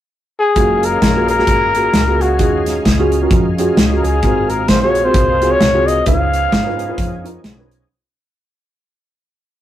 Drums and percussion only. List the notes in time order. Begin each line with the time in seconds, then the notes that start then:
0.56 kick, closed hi-hat
0.83 closed hi-hat
1.02 kick, snare, closed hi-hat
1.28 closed hi-hat
1.39 snare
1.47 kick, closed hi-hat
1.75 closed hi-hat
1.94 snare, closed hi-hat
2.21 closed hi-hat
2.39 kick, closed hi-hat
2.66 snare, closed hi-hat
2.85 kick, snare, closed hi-hat
3.12 closed hi-hat
3.31 kick, closed hi-hat
3.58 closed hi-hat
3.77 snare, closed hi-hat
4.04 closed hi-hat
4.23 kick, closed hi-hat
4.50 closed hi-hat
4.68 kick, snare, closed hi-hat
4.95 closed hi-hat
5.14 kick, closed hi-hat
5.42 closed hi-hat
5.61 snare, closed hi-hat
5.88 closed hi-hat
6.06 kick, closed hi-hat
6.33 closed hi-hat
6.52 kick, snare, closed hi-hat
6.79 closed hi-hat
6.98 kick, closed hi-hat
7.26 closed hi-hat
7.44 snare, closed hi-hat
7.71 closed hi-hat